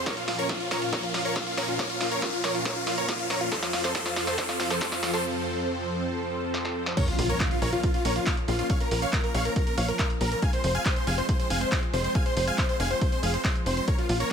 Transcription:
Already playing: F3, riser
0.06 A#2 C#4 A#4 C#5 F5, kick, snare, closed hi-hat
0.17 F4, closed hi-hat
0.28 F4, snare, open hi-hat
0.39 A#4 C#5, closed hi-hat
0.49 F4, kick, snare, closed hi-hat
0.60 F4, closed hi-hat
0.71 A#4 C#5, snare, open hi-hat
0.82 F4, closed hi-hat
0.93 A#4 C#5, kick, snare, closed hi-hat
1.03 F4, closed hi-hat
1.14 F4, snare, open hi-hat
1.25 A#4 C#5, closed hi-hat
1.36 F4, kick, snare, closed hi-hat
1.47 F4, closed hi-hat
1.57 A#4 C#5, snare, open hi-hat
1.68 F4, closed hi-hat
1.79 A#4 C#5, kick, snare, closed hi-hat
1.90 F4, closed hi-hat
2.01 F4, snare, open hi-hat
2.11 A#4 C#5, closed hi-hat
2.22 F4, kick, snare, closed hi-hat
2.33 F4, closed hi-hat
2.44 A#4 C#5, snare, open hi-hat
2.55 F4, closed hi-hat
2.65 A#4 C#5, kick, snare, closed hi-hat
2.76 F4, closed hi-hat
2.87 F4, snare, open hi-hat
2.98 A#4 C#5, closed hi-hat
3.09 F4, kick, snare, closed hi-hat
3.19 F4, closed hi-hat
3.30 A#4 C#5, snare, open hi-hat
3.41 F4, closed hi-hat
3.52 F2 F3 C4 A4 C5, kick, snare, closed hi-hat
3.62 F4, snare, closed hi-hat
3.73 F4, snare, open hi-hat
3.84 A4 C5, snare, closed hi-hat
3.95 A4 C5, kick, snare, closed hi-hat
4.06 F4, snare, closed hi-hat
4.16 F4, snare, open hi-hat
4.27 A4 C5, snare, closed hi-hat
4.38 A4 C5, kick, snare, closed hi-hat
4.49 F4, snare, closed hi-hat
4.60 F4, snare, open hi-hat
4.70 A4 C5, snare, closed hi-hat
4.81 A4 C5, kick, snare, closed hi-hat
4.92 F4, snare, closed hi-hat
5.03 F4, snare, open hi-hat
5.14 A4 C5, snare, closed hi-hat
6.54 snare
6.65 snare
6.86 snare
6.97 F3 A#3 C#4 A#4 C#5, kick, closed hi-hat, crash, impact
7.08 F4, closed hi-hat
7.19 A#1 F4, open hi-hat
7.29 A#4 C#5, closed hi-hat
7.40 F4, kick, clap, closed hi-hat
7.51 F4, closed hi-hat
7.62 A#1 A#4 C#5, open hi-hat
7.73 F4, closed hi-hat
7.83 F4, kick, closed hi-hat
7.94 F4, closed hi-hat
8.05 A#1 A#4 C#5, open hi-hat
8.16 F4, closed hi-hat
8.27 F4, kick, clap, closed hi-hat
8.37 closed hi-hat
8.48 A#1 F4, open hi-hat
8.59 F4, closed hi-hat
8.70 C#5 F5, kick, closed hi-hat
8.80 A#4, closed hi-hat
8.91 A#1 A#4, open hi-hat
9.02 C#5 F5, closed hi-hat
9.13 A#4, kick, clap, closed hi-hat
9.24 A#4, closed hi-hat
9.34 A#1 C#5 F5, open hi-hat
9.45 A#4, closed hi-hat
9.56 A#4, kick, closed hi-hat
9.67 A#4, closed hi-hat
9.78 A#1 C#5 F5, open hi-hat
9.88 A#4, closed hi-hat
9.99 A#4, kick, clap, closed hi-hat
10.10 closed hi-hat
10.21 A#1 A#4, open hi-hat
10.32 A#4, closed hi-hat
10.42 F3 G#3 C4 F5 G#5, kick, closed hi-hat
10.53 C5, closed hi-hat
10.64 F1 C5, open hi-hat
10.75 F5 G#5, closed hi-hat
10.86 C5, kick, clap, closed hi-hat
10.96 C5, closed hi-hat
11.07 F1 F5 G#5, open hi-hat
11.18 C5, closed hi-hat
11.29 C5, kick, closed hi-hat
11.39 C5, closed hi-hat
11.50 F1 F5 G#5, open hi-hat
11.61 C5, closed hi-hat
11.72 C5, kick, clap, closed hi-hat
11.83 closed hi-hat
11.93 F1 C5, open hi-hat
12.04 C5, closed hi-hat
12.15 F5 G#5, kick, closed hi-hat
12.26 C5, closed hi-hat
12.37 F1 C5, open hi-hat
12.47 F5 G#5, closed hi-hat
12.58 C5, kick, clap, closed hi-hat
12.69 C5, closed hi-hat
12.80 F1 F5 G#5, open hi-hat
12.91 C5, closed hi-hat
13.01 C5, kick, closed hi-hat
13.12 C5, closed hi-hat
13.23 F1 G#4 F5, open hi-hat
13.33 C5, closed hi-hat
13.44 C5, kick, clap, closed hi-hat
13.55 closed hi-hat
13.66 F1 C5, open hi-hat
13.77 C5, closed hi-hat
13.87 A#3 C#4 A#4 C#5, kick, closed hi-hat
13.98 F4, closed hi-hat
14.09 A#1 F4, open hi-hat
14.20 A#4 C#5, closed hi-hat

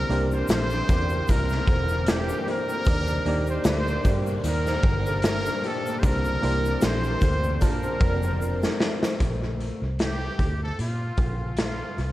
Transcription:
Already playing: C3 E3 A#3 C4 D4 E4 G4 A#4 C5 D5
0.10 C2 A#3 D4 E4 G4 A#4 C5, closed hi-hat
0.31 D4 C5, shaker
0.48 A#1 A#3 C5, snare, closed hi-hat, shaker
0.70 D4, shaker
0.89 E2 G4 A#4 D5, kick, closed hi-hat, shaker
1.09 A#3, shaker
1.27 C2 C3 A#4, kick, closed hi-hat, shaker
1.49 D4, snare, shaker
1.67 E1 A#3 A4 C5, kick, closed hi-hat
1.89 D4, shaker
2.06 A#3 G4 A#4, snare, closed hi-hat, shaker
2.29 D4, shaker
2.47 G4 A4 A#4 C5, closed hi-hat
2.69 A#3, shaker
2.85 D#2 A#2 G3 A#3 D4 D#4 G4 D5 D#5 G5, kick, closed hi-hat, shaker
2.89 G4 D5
3.07 D4, shaker
3.25 D#2 A#3 D4 D#4 G4 D5, closed hi-hat
3.47 D4 C5 D#5, shaker
3.64 D2 A#3, snare, closed hi-hat, shaker
3.68 C5
3.87 D4, shaker
4.05 G2 G4 A#4 D5, kick, closed hi-hat, shaker
4.27 A#3, shaker
4.44 D#2 D#3, closed hi-hat, shaker
4.48 A#4
4.66 D4 C5 D#5, snare, shaker
4.83 G1 A#3, kick, closed hi-hat
5.06 D4 A4 C5, shaker
5.22 A#3 A#4, snare, closed hi-hat, shaker
5.46 D4, shaker
5.64 G4 A4, closed hi-hat
5.86 A#3, shaker
5.99 C2 E3 C4 C5, closed hi-hat
6.03 C3 A#3 D4 E4 G4 A#4 C5, kick, shaker
6.25 D4, shaker
6.42 C2 A#3 D4 E4 G4 A#4 C5, closed hi-hat
6.65 D4, shaker
6.81 A#1 A#3 C5, snare, closed hi-hat, shaker
7.04 D4, shaker
7.21 D2 G4 A4 C5, kick, closed hi-hat, shaker
7.44 A#3, shaker
7.61 A#1 A#2 F3 A#3 C4 D4 F4 A#4 C5 A5, kick, closed hi-hat, shaker
7.83 C4, shaker
8.00 F1 A#4 D5, kick, closed hi-hat
8.23 C4, shaker
8.41 F4 A#4, shaker
8.63 C4, snare, shaker
8.80 F4 A4 C5, snare
9.03 A3, snare, shaker
9.20 A#1, kick, closed hi-hat
9.60 closed hi-hat
9.82 C2
9.99 G4, snare, closed hi-hat
10.39 D2, kick, closed hi-hat
10.63 A4
10.79 A#2 F4, closed hi-hat
11.17 A#1, kick, closed hi-hat
11.57 F4, snare, closed hi-hat
11.98 C2, closed hi-hat

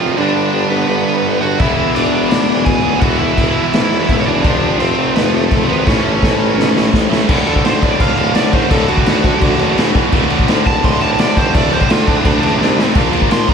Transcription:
Already playing: F2 C3 F3 A3 C4 F4 F5
0.00 D1 F2 C3 F3
0.17 G1 G2 D3 G3 B3 D4 G4 D5
0.36 G1
0.53 G1
0.70 G1 B3 B4
0.88 G1 B3 B4
1.07 G1
1.24 G1
1.41 G1 D3 G3 F#4 F#5
1.45 G2
1.59 E1 E2 B2 E3 G#3 B3 E4 E5, kick, crash
1.95 E1 D4 D5, crash
2.13 E1
2.29 E1 D4 D5, snare, crash
2.49 E1
2.65 E1 G#4 G#5, kick, crash
2.82 D1 B2 E3
2.87 E2
3.00 E1 E2 B2 E3 G#3 B3 E4 F#4 F#5, kick, crash
3.18 E1 E4 E5
3.37 E1, kick, crash
3.73 E1, snare, crash
3.91 E1
4.09 E1, kick, crash
4.20 C#5
4.26 E1 E2 B2 E3 D4 D5
4.42 F1 F2 C3 F3 A3 C4 F4, kick, crash
4.80 F1 C4 C5, crash
4.97 F1
5.15 F1 B3 B4, snare, crash
5.33 F1 A3 A4
5.51 F1, kick, crash
5.68 G#1 F2 C3 F3 B3 B4
5.86 A1 A2 E3 A3 C#4 E4 A4 C#5, kick, snare
6.04 A1
6.22 A1, kick, snare
6.40 A1
6.57 A1, snare
6.76 A1, snare
6.93 A1, kick, snare
7.09 A1 E3 A3, snare
7.14 A2
7.29 D1 D2 A2 D3, kick, crash
7.46 D1 D2 A2 D3 A4, crash
7.56 kick
7.64 D2 A2 D3 C5, snare, crash
7.82 D1 D2 A2 D3 D5, kick, crash
8.00 D1 D2 A2 D3 F5, kick, crash
8.17 D1 D2 A2 D3, crash
8.35 D1 D2 A2 D3 D5, snare, crash
8.52 F#1 D2 A2 D3 C5, kick, crash
8.70 D1 D2 A2 D3 A4, kick, crash
8.88 D2 A2 D3 F#4, crash
8.97 kick
9.06 D2 A2 D3, snare, crash
9.24 D2 A2 D3, kick, crash
9.41 D2 A2 D3, kick, crash
9.59 F#1 D2 A2 D3, crash
9.76 E1 E2 B2 E3, snare, crash
9.94 E2 B2 E3, kick, crash
10.12 D1 D2 A2 D3, kick, crash
10.29 D2 A2 D3, crash
10.39 kick
10.46 D2 A2 D3, snare, crash
10.66 D1 D2 A2 D3 A5, kick, crash
10.83 D1 D2 A2 D3 C6, kick, crash
11.01 D1 D2 A2 D3 A5, crash
11.19 D1 D2 A2 D3 D5, snare, crash
11.37 F#1 D2 A2 D3 C5, kick, crash
11.54 D1 D2 A2 D3 D5, kick, crash
11.71 D2 A2 D3 C5, crash
11.81 kick
11.89 D2 A2 D3 F4, snare, crash
12.07 D2 A2 D3 D4, kick, crash
12.24 D2 A2 D3 D4, kick, crash
12.41 C#2 D2 A2 D3, crash
12.59 C2 C3 G3 C4, snare
12.77 C3 G3 C4, snare
12.94 A#1 A#2 F3 A#3, kick, crash
13.12 A#1 A#2 F3 A#3, crash
13.22 kick
13.29 A#2 F3 A#3 C6, snare, crash
13.47 A#1 A#2 F3 A#3 A#5, kick, crash

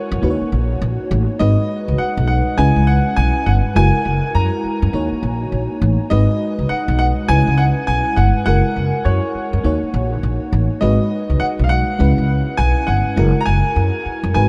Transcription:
Already playing: G#3 E4 F#4 A#4 C#5
0.11 F#2
0.22 D#2 A#3 D#4 F#4 B4
0.30 C#5
0.41 muted upright bass stroke
0.52 A#1
0.81 A#1
1.11 A1
1.39 G#1 G#3 D#4 F#4 B4 D#5
1.88 C#2
1.98 F#5, muted upright bass stroke
2.17 B1
2.28 F#5
2.57 C#2 G#3 C#4 E4 B4 G#5
2.76 C#2
2.87 F#5
3.16 B1 G#5
3.46 G1 F#5
3.75 F#1 G#3 E4 F#4 A#4 G#5
4.05 F#1
4.35 F#2 A#5
4.64 muted upright bass stroke
4.82 F#2
4.93 D#2 A#3 D#4 F#4 C#5
5.12 muted upright bass stroke
5.23 A#1
5.52 A#1
5.82 A1
6.10 G#1 G#3 D#4 F#4 B4 D#5
6.59 C#2
6.69 F#5, muted upright bass stroke
6.88 B1
6.99 F#5
7.28 C#2 G#3 C#4 E4 B4 G#5
7.47 C#2
7.58 F#5
7.87 B1 G#5
8.16 G1 F#5
8.46 F#1 G#3 E4 F#4 A#4 F#5
8.76 F#1
9.05 F#2 C#5
9.35 muted upright bass stroke
9.53 F#2
9.63 D#2 A#3 D#4 F#4 C#5
9.83 muted upright bass stroke
9.94 A#1
10.23 A#1
10.53 A1
10.81 G#1 G#3 D#4 F#4 B4 D#5
11.30 C#2
11.40 F#5
11.59 B1
11.64 F5
11.69 F#5
11.99 C#2 G#3 C#4 E4 B4
12.18 C#2
12.57 B1 G#5
12.87 G1 F#5
13.16 F#1 G#3 E4 F#4 A#4
13.41 A#5
13.46 F#1 G#5
13.76 F#2
14.05 muted upright bass stroke
14.23 F#2
14.34 G#1 G#3 D#4 F#4 B4 G#5

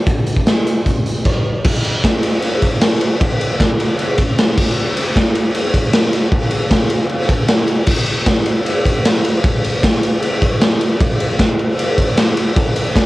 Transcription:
0.07 kick, closed hi-hat
0.27 closed hi-hat
0.37 kick
0.47 snare, closed hi-hat
0.67 closed hi-hat
0.86 kick, closed hi-hat
1.06 closed hi-hat
1.25 kick, crash
1.64 kick, crash
1.85 ride
2.04 kick, snare, ride
2.23 ride
2.42 ride
2.62 kick, ride
2.81 snare, ride
3.01 ride
3.21 kick, ride
3.41 ride
3.60 kick, snare, ride
3.80 ride
3.99 ride
4.18 kick, ride
4.38 snare, ride
4.57 kick, crash
4.97 ride
5.16 kick, snare, ride
5.35 ride
5.54 ride
5.74 kick, ride
5.93 snare, ride
6.13 snare, ride
6.32 kick, ride
6.51 ride
6.71 kick, snare, ride
6.90 ride
7.09 ride
7.29 kick, ride
7.48 snare, ride
7.68 ride
7.87 kick, crash
8.06 ride
8.26 kick, snare, ride
8.46 ride
8.66 ride
8.85 kick, ride
9.05 snare, ride
9.24 ride
9.44 kick, ride
9.64 ride
9.83 kick, snare, ride
10.03 ride
10.22 ride
10.42 kick, ride
10.61 snare, ride
10.81 ride
11.00 kick, ride
11.20 ride
11.39 kick, snare, ride
11.59 ride
11.79 ride
11.98 kick, ride
12.17 snare, ride
12.37 ride
12.56 kick, ride
12.76 ride
12.96 kick, snare, ride

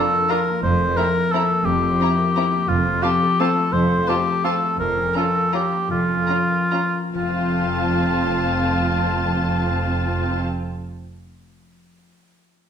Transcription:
Already playing: F3 A#3 D4 F4 A4 A#4
0.13 A#4
0.29 D4 F4 A#4 A#5
0.48 A#3
0.63 F1 F2 F3 C5
0.80 C4
0.97 C4 E4 A#4 A#5
1.15 A#4
1.32 C4 E4 A4 A#5
1.50 A#3
1.65 F1 F2 F3 G4
1.83 C4
2.00 C4 E4 A#5
2.18 A#4
2.36 C4 E4 A#5
2.53 A#3
2.68 F1 F2 F3 F4
2.85 C4
3.03 C4 F4 G4 A5
3.22 A4
3.39 C4 F4 A4 A5
3.57 A3
3.73 F1 F2 F3 C5
3.90 C4
4.07 C4 F4 G4 A5
4.27 A4
4.44 C4 F4 A4 A5
4.62 A3
4.79 F1 F2 F3 A#4
4.97 C#4
5.14 C#4 F4 A4 A#5
5.35 A#4
5.52 C#4 F4 G4 A#5
5.72 A#3
5.89 F1 F2 F3 F4
6.08 C#4
6.27 C#4 F4 A#5
6.50 A#4
6.71 C#4 F4 A#5
6.94 A#3
7.13 F1 F2 F3 C4 F4 A5
7.21 A3
7.28 C4
7.35 F4
7.42 C5

